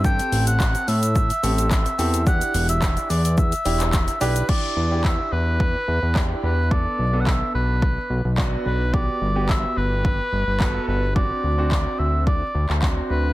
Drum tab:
CC |----------------|----------------|x---------------|----------------|
HH |-xox-xox-xox-xox|-xox-xox-xox-xox|----------------|----------------|
SH |xxxxxxxxxxxxxxxx|xxxxxxxxxxxxxxxx|----------------|----------------|
CP |----x-------x---|----x------xx---|----x-------x---|----x-------x---|
BD |o---o---o---o---|o---o---o---o---|o---o---o---o---|o---o---o---o---|

CC |----------------|----------------|
HH |----------------|----------------|
SH |----------------|----------------|
CP |----x-------x---|----x------xx---|
BD |o---o---o---o---|o---o---o---o---|